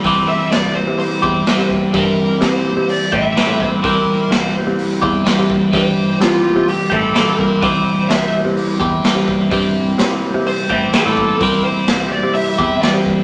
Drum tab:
HH |o---o---o---o---|o---o---o---o---|o---o---o---o---|o---o---o---o---|
SD |----o-------o---|----o-------o---|----o-------oo--|----o-------oo--|
BD |o---------o---o-|o---------o---o-|o---------o---o-|o---------o---o-|

HH |o---o---o---o---|o---o---o---o---|o---o---o---o---|
SD |----o-------oo--|----o-------o---|----o-------o---|
BD |o---------o---o-|o---------o---o-|o---------o---o-|